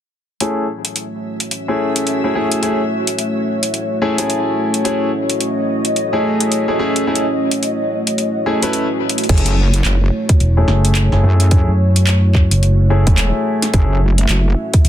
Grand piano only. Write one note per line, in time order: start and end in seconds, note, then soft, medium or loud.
0.40 0.65 A3 medium
0.40 0.65 C#4 medium
0.40 0.65 E4 medium
0.40 0.65 G#4 medium
1.68 2.20 A3 medium
1.68 2.20 C#4 medium
1.68 2.20 E4 medium
1.68 2.20 G#4 medium
2.24 2.33 A3 medium
2.24 2.33 C#4 medium
2.24 2.33 E4 medium
2.24 2.33 G#4 medium
2.35 2.59 A3 medium
2.35 2.59 C#4 medium
2.35 2.59 E4 medium
2.35 2.59 G#4 medium
2.63 2.80 A3 medium
2.63 2.80 C#4 medium
2.63 2.80 E4 medium
2.63 2.80 G#4 medium
4.02 4.16 A3 medium
4.02 4.16 C#4 medium
4.02 4.16 E4 medium
4.02 4.16 G#4 loud
4.18 4.82 A3 medium
4.18 4.82 C#4 medium
4.18 4.82 E4 medium
4.18 4.82 G#4 medium
4.85 5.09 A3 medium
4.85 5.09 C#4 medium
4.85 5.09 E4 medium
4.85 5.09 G#4 medium
6.13 6.64 A3 medium
6.13 6.64 C#4 medium
6.13 6.64 E4 medium
6.13 6.64 G#4 medium
6.68 6.78 A3 medium
6.68 6.78 C#4 medium
6.68 6.78 E4 medium
6.68 6.78 G#4 medium
6.79 7.04 A3 medium
6.79 7.04 C#4 medium
6.79 7.04 E4 medium
6.79 7.04 G#4 medium
7.07 7.24 A3 medium
7.07 7.25 C#4 medium
7.07 7.25 E4 medium
7.07 7.25 G#4 medium
8.46 8.60 A3 medium
8.46 8.60 C#4 medium
8.46 8.60 E4 medium
8.46 8.60 G#4 medium
8.63 8.85 A3 medium
8.63 8.85 C#4 medium
8.63 8.85 E4 medium
8.63 8.85 B4 loud
9.29 9.54 A3 medium
9.29 9.54 C#4 medium
9.29 9.54 E4 medium
9.29 9.54 G#4 medium
10.57 11.09 A3 medium
10.57 11.09 C#4 medium
10.57 11.09 E4 medium
10.57 11.09 G#4 medium
11.12 11.22 A3 medium
11.12 11.22 C#4 medium
11.12 11.22 E4 medium
11.12 11.22 G#4 medium
11.23 11.48 A3 medium
11.23 11.48 C#4 medium
11.23 11.48 E4 medium
11.23 11.48 G#4 medium
11.51 11.69 A3 medium
11.51 11.69 C#4 medium
11.51 11.69 E4 medium
11.51 11.69 G#4 medium
12.90 13.05 A3 loud
12.90 13.05 C#4 medium
12.90 13.05 E4 medium
12.90 13.05 G#4 loud
13.07 13.71 A3 medium
13.07 13.71 C#4 medium
13.73 13.98 A3 medium
13.73 13.98 C#4 medium
13.73 13.98 E4 medium
13.73 13.98 G#4 medium